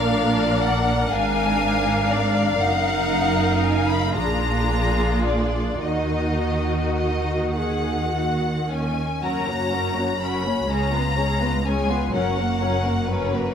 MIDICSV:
0, 0, Header, 1, 6, 480
1, 0, Start_track
1, 0, Key_signature, -6, "minor"
1, 0, Tempo, 981997
1, 1273, Tempo, 1034483
1, 1274, Time_signature, 6, 3, 24, 8
1, 1753, Tempo, 1075269
1, 2233, Tempo, 1127820
1, 4153, Tempo, 963082
1, 4155, Key_signature, 6, "major"
1, 6304, End_track
2, 0, Start_track
2, 0, Title_t, "Violin section"
2, 0, Program_c, 0, 48
2, 0, Note_on_c, 0, 77, 75
2, 298, Note_off_c, 0, 77, 0
2, 305, Note_on_c, 0, 78, 70
2, 541, Note_on_c, 0, 80, 81
2, 548, Note_off_c, 0, 78, 0
2, 1027, Note_off_c, 0, 80, 0
2, 1028, Note_on_c, 0, 74, 69
2, 1268, Note_on_c, 0, 78, 72
2, 1272, Note_off_c, 0, 74, 0
2, 1749, Note_on_c, 0, 80, 66
2, 1751, Note_off_c, 0, 78, 0
2, 1860, Note_on_c, 0, 83, 67
2, 1870, Note_off_c, 0, 80, 0
2, 1983, Note_on_c, 0, 82, 69
2, 1986, Note_off_c, 0, 83, 0
2, 2455, Note_off_c, 0, 82, 0
2, 2463, Note_on_c, 0, 74, 58
2, 2702, Note_off_c, 0, 74, 0
2, 2707, Note_on_c, 0, 75, 53
2, 3186, Note_off_c, 0, 75, 0
2, 3191, Note_on_c, 0, 75, 53
2, 3418, Note_off_c, 0, 75, 0
2, 3438, Note_on_c, 0, 78, 57
2, 3925, Note_off_c, 0, 78, 0
2, 3926, Note_on_c, 0, 80, 56
2, 4150, Note_on_c, 0, 82, 68
2, 4156, Note_off_c, 0, 80, 0
2, 4640, Note_off_c, 0, 82, 0
2, 4643, Note_on_c, 0, 83, 61
2, 4881, Note_on_c, 0, 82, 70
2, 4882, Note_off_c, 0, 83, 0
2, 5360, Note_off_c, 0, 82, 0
2, 5361, Note_on_c, 0, 80, 67
2, 5603, Note_off_c, 0, 80, 0
2, 5606, Note_on_c, 0, 78, 63
2, 6072, Note_off_c, 0, 78, 0
2, 6079, Note_on_c, 0, 71, 57
2, 6304, Note_off_c, 0, 71, 0
2, 6304, End_track
3, 0, Start_track
3, 0, Title_t, "Violin section"
3, 0, Program_c, 1, 48
3, 0, Note_on_c, 1, 74, 62
3, 547, Note_on_c, 1, 77, 70
3, 550, Note_off_c, 1, 74, 0
3, 1972, Note_off_c, 1, 77, 0
3, 1991, Note_on_c, 1, 65, 52
3, 2709, Note_off_c, 1, 65, 0
3, 2710, Note_on_c, 1, 66, 44
3, 3801, Note_off_c, 1, 66, 0
3, 4153, Note_on_c, 1, 66, 41
3, 4154, Note_on_c, 1, 70, 40
3, 4269, Note_off_c, 1, 66, 0
3, 4270, Note_off_c, 1, 70, 0
3, 4281, Note_on_c, 1, 73, 37
3, 4282, Note_on_c, 1, 61, 37
3, 4400, Note_on_c, 1, 70, 36
3, 4402, Note_off_c, 1, 73, 0
3, 4403, Note_off_c, 1, 61, 0
3, 4404, Note_on_c, 1, 66, 37
3, 4522, Note_off_c, 1, 70, 0
3, 4522, Note_on_c, 1, 73, 37
3, 4523, Note_on_c, 1, 61, 35
3, 4524, Note_off_c, 1, 66, 0
3, 4642, Note_on_c, 1, 66, 36
3, 4642, Note_on_c, 1, 70, 34
3, 4643, Note_off_c, 1, 61, 0
3, 4643, Note_off_c, 1, 73, 0
3, 4754, Note_off_c, 1, 66, 0
3, 4754, Note_off_c, 1, 70, 0
3, 4763, Note_on_c, 1, 73, 35
3, 4766, Note_on_c, 1, 61, 36
3, 4875, Note_off_c, 1, 73, 0
3, 4881, Note_on_c, 1, 68, 41
3, 4881, Note_on_c, 1, 73, 43
3, 4884, Note_off_c, 1, 61, 0
3, 4993, Note_off_c, 1, 68, 0
3, 4993, Note_off_c, 1, 73, 0
3, 4998, Note_on_c, 1, 71, 36
3, 4999, Note_on_c, 1, 65, 36
3, 5119, Note_off_c, 1, 71, 0
3, 5120, Note_off_c, 1, 65, 0
3, 5120, Note_on_c, 1, 68, 41
3, 5120, Note_on_c, 1, 73, 40
3, 5240, Note_off_c, 1, 68, 0
3, 5240, Note_off_c, 1, 73, 0
3, 5241, Note_on_c, 1, 65, 37
3, 5241, Note_on_c, 1, 71, 36
3, 5361, Note_off_c, 1, 65, 0
3, 5361, Note_off_c, 1, 71, 0
3, 5363, Note_on_c, 1, 73, 40
3, 5365, Note_on_c, 1, 68, 38
3, 5475, Note_off_c, 1, 73, 0
3, 5476, Note_off_c, 1, 68, 0
3, 5484, Note_on_c, 1, 65, 37
3, 5484, Note_on_c, 1, 71, 42
3, 5603, Note_on_c, 1, 73, 41
3, 5604, Note_off_c, 1, 65, 0
3, 5604, Note_off_c, 1, 71, 0
3, 5604, Note_on_c, 1, 70, 42
3, 5715, Note_off_c, 1, 73, 0
3, 5716, Note_off_c, 1, 70, 0
3, 5727, Note_on_c, 1, 66, 39
3, 5728, Note_on_c, 1, 70, 39
3, 5840, Note_off_c, 1, 70, 0
3, 5845, Note_off_c, 1, 66, 0
3, 5845, Note_on_c, 1, 73, 41
3, 5846, Note_on_c, 1, 70, 40
3, 5957, Note_off_c, 1, 70, 0
3, 5963, Note_off_c, 1, 73, 0
3, 5963, Note_on_c, 1, 70, 35
3, 5964, Note_on_c, 1, 66, 35
3, 6078, Note_off_c, 1, 70, 0
3, 6081, Note_off_c, 1, 66, 0
3, 6084, Note_on_c, 1, 70, 37
3, 6085, Note_on_c, 1, 73, 39
3, 6192, Note_off_c, 1, 70, 0
3, 6193, Note_off_c, 1, 73, 0
3, 6202, Note_on_c, 1, 66, 38
3, 6202, Note_on_c, 1, 70, 37
3, 6304, Note_off_c, 1, 66, 0
3, 6304, Note_off_c, 1, 70, 0
3, 6304, End_track
4, 0, Start_track
4, 0, Title_t, "Viola section"
4, 0, Program_c, 2, 48
4, 0, Note_on_c, 2, 62, 55
4, 0, Note_on_c, 2, 70, 56
4, 537, Note_off_c, 2, 62, 0
4, 537, Note_off_c, 2, 70, 0
4, 552, Note_on_c, 2, 62, 54
4, 554, Note_on_c, 2, 70, 54
4, 1259, Note_off_c, 2, 62, 0
4, 1260, Note_off_c, 2, 70, 0
4, 1272, Note_on_c, 2, 70, 58
4, 1273, Note_on_c, 2, 63, 55
4, 1973, Note_off_c, 2, 70, 0
4, 1974, Note_off_c, 2, 63, 0
4, 1990, Note_on_c, 2, 68, 49
4, 1991, Note_on_c, 2, 62, 48
4, 2709, Note_off_c, 2, 62, 0
4, 2709, Note_off_c, 2, 68, 0
4, 2710, Note_on_c, 2, 66, 47
4, 2712, Note_on_c, 2, 63, 44
4, 3375, Note_off_c, 2, 66, 0
4, 3376, Note_off_c, 2, 63, 0
4, 3438, Note_on_c, 2, 68, 51
4, 3663, Note_off_c, 2, 68, 0
4, 3679, Note_on_c, 2, 66, 42
4, 3925, Note_off_c, 2, 66, 0
4, 3926, Note_on_c, 2, 61, 40
4, 4151, Note_off_c, 2, 61, 0
4, 4156, Note_on_c, 2, 54, 44
4, 4156, Note_on_c, 2, 61, 45
4, 4271, Note_off_c, 2, 54, 0
4, 4271, Note_off_c, 2, 61, 0
4, 4281, Note_on_c, 2, 58, 38
4, 4281, Note_on_c, 2, 66, 38
4, 4400, Note_on_c, 2, 61, 40
4, 4401, Note_on_c, 2, 54, 38
4, 4402, Note_off_c, 2, 58, 0
4, 4403, Note_off_c, 2, 66, 0
4, 4521, Note_on_c, 2, 58, 36
4, 4521, Note_on_c, 2, 66, 35
4, 4522, Note_off_c, 2, 54, 0
4, 4522, Note_off_c, 2, 61, 0
4, 4642, Note_off_c, 2, 58, 0
4, 4642, Note_off_c, 2, 66, 0
4, 4642, Note_on_c, 2, 54, 37
4, 4642, Note_on_c, 2, 61, 36
4, 4754, Note_off_c, 2, 54, 0
4, 4754, Note_off_c, 2, 61, 0
4, 4763, Note_on_c, 2, 66, 36
4, 4764, Note_on_c, 2, 58, 36
4, 4880, Note_on_c, 2, 56, 39
4, 4880, Note_on_c, 2, 61, 39
4, 4883, Note_off_c, 2, 58, 0
4, 4883, Note_off_c, 2, 66, 0
4, 4992, Note_off_c, 2, 56, 0
4, 4992, Note_off_c, 2, 61, 0
4, 5001, Note_on_c, 2, 59, 34
4, 5121, Note_off_c, 2, 59, 0
4, 5121, Note_on_c, 2, 61, 40
4, 5122, Note_on_c, 2, 56, 37
4, 5240, Note_off_c, 2, 61, 0
4, 5241, Note_off_c, 2, 56, 0
4, 5241, Note_on_c, 2, 59, 36
4, 5242, Note_off_c, 2, 59, 0
4, 5242, Note_on_c, 2, 59, 37
4, 5360, Note_on_c, 2, 61, 38
4, 5361, Note_off_c, 2, 59, 0
4, 5361, Note_on_c, 2, 56, 40
4, 5473, Note_off_c, 2, 61, 0
4, 5474, Note_off_c, 2, 56, 0
4, 5480, Note_on_c, 2, 59, 37
4, 5481, Note_off_c, 2, 59, 0
4, 5481, Note_on_c, 2, 59, 40
4, 5597, Note_on_c, 2, 54, 45
4, 5598, Note_on_c, 2, 61, 42
4, 5603, Note_off_c, 2, 59, 0
4, 5712, Note_off_c, 2, 54, 0
4, 5713, Note_off_c, 2, 61, 0
4, 5724, Note_on_c, 2, 58, 39
4, 5843, Note_on_c, 2, 54, 37
4, 5843, Note_on_c, 2, 61, 41
4, 5844, Note_off_c, 2, 58, 0
4, 5962, Note_off_c, 2, 54, 0
4, 5962, Note_off_c, 2, 61, 0
4, 5962, Note_on_c, 2, 58, 36
4, 5964, Note_off_c, 2, 58, 0
4, 5964, Note_on_c, 2, 58, 36
4, 6081, Note_off_c, 2, 58, 0
4, 6081, Note_on_c, 2, 61, 38
4, 6082, Note_on_c, 2, 54, 39
4, 6190, Note_off_c, 2, 61, 0
4, 6191, Note_off_c, 2, 54, 0
4, 6197, Note_on_c, 2, 58, 38
4, 6198, Note_off_c, 2, 58, 0
4, 6198, Note_on_c, 2, 58, 37
4, 6304, Note_off_c, 2, 58, 0
4, 6304, End_track
5, 0, Start_track
5, 0, Title_t, "Cello section"
5, 0, Program_c, 3, 48
5, 0, Note_on_c, 3, 46, 59
5, 551, Note_on_c, 3, 44, 57
5, 552, Note_off_c, 3, 46, 0
5, 1259, Note_off_c, 3, 44, 0
5, 1277, Note_on_c, 3, 42, 54
5, 1976, Note_off_c, 3, 42, 0
5, 1994, Note_on_c, 3, 46, 49
5, 2709, Note_on_c, 3, 51, 44
5, 2711, Note_off_c, 3, 46, 0
5, 4049, Note_off_c, 3, 51, 0
5, 4154, Note_on_c, 3, 42, 49
5, 4862, Note_off_c, 3, 42, 0
5, 4883, Note_on_c, 3, 37, 49
5, 5589, Note_off_c, 3, 37, 0
5, 5605, Note_on_c, 3, 42, 50
5, 6304, Note_off_c, 3, 42, 0
5, 6304, End_track
6, 0, Start_track
6, 0, Title_t, "Double bass section"
6, 0, Program_c, 4, 48
6, 0, Note_on_c, 4, 34, 51
6, 551, Note_on_c, 4, 32, 56
6, 552, Note_off_c, 4, 34, 0
6, 1259, Note_off_c, 4, 32, 0
6, 1274, Note_on_c, 4, 30, 49
6, 1974, Note_off_c, 4, 30, 0
6, 1990, Note_on_c, 4, 34, 49
6, 2708, Note_on_c, 4, 39, 42
6, 2709, Note_off_c, 4, 34, 0
6, 4049, Note_off_c, 4, 39, 0
6, 4153, Note_on_c, 4, 30, 43
6, 4861, Note_off_c, 4, 30, 0
6, 4880, Note_on_c, 4, 37, 48
6, 5588, Note_off_c, 4, 37, 0
6, 5600, Note_on_c, 4, 30, 46
6, 6304, Note_off_c, 4, 30, 0
6, 6304, End_track
0, 0, End_of_file